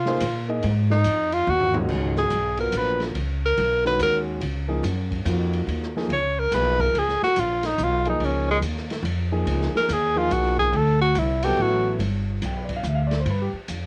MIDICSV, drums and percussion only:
0, 0, Header, 1, 2, 480
1, 0, Start_track
1, 0, Tempo, 421053
1, 722, Time_signature, 3, 2, 24, 8
1, 15804, End_track
2, 0, Start_track
2, 0, Title_t, "Drums"
2, 65, Note_on_c, 9, 38, 64
2, 179, Note_off_c, 9, 38, 0
2, 232, Note_on_c, 9, 44, 55
2, 232, Note_on_c, 9, 51, 87
2, 346, Note_off_c, 9, 44, 0
2, 346, Note_off_c, 9, 51, 0
2, 714, Note_on_c, 9, 51, 66
2, 828, Note_off_c, 9, 51, 0
2, 1032, Note_on_c, 9, 38, 60
2, 1146, Note_off_c, 9, 38, 0
2, 1190, Note_on_c, 9, 44, 64
2, 1190, Note_on_c, 9, 51, 81
2, 1304, Note_off_c, 9, 44, 0
2, 1304, Note_off_c, 9, 51, 0
2, 1510, Note_on_c, 9, 51, 54
2, 1624, Note_off_c, 9, 51, 0
2, 1829, Note_on_c, 9, 43, 64
2, 1943, Note_off_c, 9, 43, 0
2, 1987, Note_on_c, 9, 43, 109
2, 2101, Note_off_c, 9, 43, 0
2, 2152, Note_on_c, 9, 49, 73
2, 2155, Note_on_c, 9, 36, 73
2, 2266, Note_off_c, 9, 49, 0
2, 2269, Note_off_c, 9, 36, 0
2, 2461, Note_on_c, 9, 38, 48
2, 2575, Note_off_c, 9, 38, 0
2, 2626, Note_on_c, 9, 44, 48
2, 2626, Note_on_c, 9, 51, 64
2, 2740, Note_off_c, 9, 44, 0
2, 2740, Note_off_c, 9, 51, 0
2, 2936, Note_on_c, 9, 51, 52
2, 3050, Note_off_c, 9, 51, 0
2, 3104, Note_on_c, 9, 44, 63
2, 3104, Note_on_c, 9, 51, 79
2, 3218, Note_off_c, 9, 44, 0
2, 3218, Note_off_c, 9, 51, 0
2, 3421, Note_on_c, 9, 51, 49
2, 3422, Note_on_c, 9, 38, 43
2, 3535, Note_off_c, 9, 51, 0
2, 3536, Note_off_c, 9, 38, 0
2, 3591, Note_on_c, 9, 51, 66
2, 3705, Note_off_c, 9, 51, 0
2, 4073, Note_on_c, 9, 51, 66
2, 4187, Note_off_c, 9, 51, 0
2, 4389, Note_on_c, 9, 38, 44
2, 4503, Note_off_c, 9, 38, 0
2, 4552, Note_on_c, 9, 44, 54
2, 4552, Note_on_c, 9, 51, 66
2, 4666, Note_off_c, 9, 44, 0
2, 4666, Note_off_c, 9, 51, 0
2, 5031, Note_on_c, 9, 51, 73
2, 5145, Note_off_c, 9, 51, 0
2, 5515, Note_on_c, 9, 44, 68
2, 5515, Note_on_c, 9, 51, 68
2, 5629, Note_off_c, 9, 44, 0
2, 5629, Note_off_c, 9, 51, 0
2, 5828, Note_on_c, 9, 36, 62
2, 5833, Note_on_c, 9, 51, 55
2, 5942, Note_off_c, 9, 36, 0
2, 5947, Note_off_c, 9, 51, 0
2, 5993, Note_on_c, 9, 44, 58
2, 5993, Note_on_c, 9, 51, 78
2, 6107, Note_off_c, 9, 44, 0
2, 6107, Note_off_c, 9, 51, 0
2, 6306, Note_on_c, 9, 51, 46
2, 6420, Note_off_c, 9, 51, 0
2, 6479, Note_on_c, 9, 51, 60
2, 6593, Note_off_c, 9, 51, 0
2, 6640, Note_on_c, 9, 38, 33
2, 6754, Note_off_c, 9, 38, 0
2, 6798, Note_on_c, 9, 38, 48
2, 6912, Note_off_c, 9, 38, 0
2, 6952, Note_on_c, 9, 51, 61
2, 7066, Note_off_c, 9, 51, 0
2, 7429, Note_on_c, 9, 44, 57
2, 7429, Note_on_c, 9, 51, 78
2, 7543, Note_off_c, 9, 44, 0
2, 7543, Note_off_c, 9, 51, 0
2, 7745, Note_on_c, 9, 36, 67
2, 7746, Note_on_c, 9, 51, 48
2, 7859, Note_off_c, 9, 36, 0
2, 7860, Note_off_c, 9, 51, 0
2, 7921, Note_on_c, 9, 51, 68
2, 8035, Note_off_c, 9, 51, 0
2, 8077, Note_on_c, 9, 38, 31
2, 8191, Note_off_c, 9, 38, 0
2, 8236, Note_on_c, 9, 38, 45
2, 8350, Note_off_c, 9, 38, 0
2, 8390, Note_on_c, 9, 44, 64
2, 8390, Note_on_c, 9, 51, 77
2, 8504, Note_off_c, 9, 44, 0
2, 8504, Note_off_c, 9, 51, 0
2, 8697, Note_on_c, 9, 51, 70
2, 8698, Note_on_c, 9, 38, 49
2, 8811, Note_off_c, 9, 51, 0
2, 8812, Note_off_c, 9, 38, 0
2, 8867, Note_on_c, 9, 44, 62
2, 8981, Note_off_c, 9, 44, 0
2, 9181, Note_on_c, 9, 51, 53
2, 9295, Note_off_c, 9, 51, 0
2, 9350, Note_on_c, 9, 51, 71
2, 9464, Note_off_c, 9, 51, 0
2, 9829, Note_on_c, 9, 44, 50
2, 9829, Note_on_c, 9, 51, 84
2, 9943, Note_off_c, 9, 44, 0
2, 9943, Note_off_c, 9, 51, 0
2, 9997, Note_on_c, 9, 38, 27
2, 10111, Note_off_c, 9, 38, 0
2, 10147, Note_on_c, 9, 51, 53
2, 10159, Note_on_c, 9, 38, 58
2, 10261, Note_off_c, 9, 51, 0
2, 10273, Note_off_c, 9, 38, 0
2, 10317, Note_on_c, 9, 51, 73
2, 10431, Note_off_c, 9, 51, 0
2, 10795, Note_on_c, 9, 51, 75
2, 10909, Note_off_c, 9, 51, 0
2, 10959, Note_on_c, 9, 38, 36
2, 11073, Note_off_c, 9, 38, 0
2, 11121, Note_on_c, 9, 38, 50
2, 11235, Note_off_c, 9, 38, 0
2, 11278, Note_on_c, 9, 44, 59
2, 11278, Note_on_c, 9, 51, 83
2, 11392, Note_off_c, 9, 44, 0
2, 11392, Note_off_c, 9, 51, 0
2, 11756, Note_on_c, 9, 44, 53
2, 11756, Note_on_c, 9, 51, 80
2, 11870, Note_off_c, 9, 44, 0
2, 11870, Note_off_c, 9, 51, 0
2, 12067, Note_on_c, 9, 36, 54
2, 12181, Note_off_c, 9, 36, 0
2, 12236, Note_on_c, 9, 51, 76
2, 12350, Note_off_c, 9, 51, 0
2, 12713, Note_on_c, 9, 44, 51
2, 12713, Note_on_c, 9, 51, 80
2, 12827, Note_off_c, 9, 44, 0
2, 12827, Note_off_c, 9, 51, 0
2, 13025, Note_on_c, 9, 51, 85
2, 13139, Note_off_c, 9, 51, 0
2, 13677, Note_on_c, 9, 51, 71
2, 13791, Note_off_c, 9, 51, 0
2, 14157, Note_on_c, 9, 44, 61
2, 14157, Note_on_c, 9, 51, 79
2, 14271, Note_off_c, 9, 44, 0
2, 14271, Note_off_c, 9, 51, 0
2, 14466, Note_on_c, 9, 51, 71
2, 14467, Note_on_c, 9, 36, 49
2, 14580, Note_off_c, 9, 51, 0
2, 14581, Note_off_c, 9, 36, 0
2, 14634, Note_on_c, 9, 44, 64
2, 14748, Note_off_c, 9, 44, 0
2, 14947, Note_on_c, 9, 51, 48
2, 14948, Note_on_c, 9, 38, 59
2, 15061, Note_off_c, 9, 51, 0
2, 15062, Note_off_c, 9, 38, 0
2, 15114, Note_on_c, 9, 51, 67
2, 15228, Note_off_c, 9, 51, 0
2, 15596, Note_on_c, 9, 44, 56
2, 15596, Note_on_c, 9, 51, 74
2, 15710, Note_off_c, 9, 44, 0
2, 15710, Note_off_c, 9, 51, 0
2, 15804, End_track
0, 0, End_of_file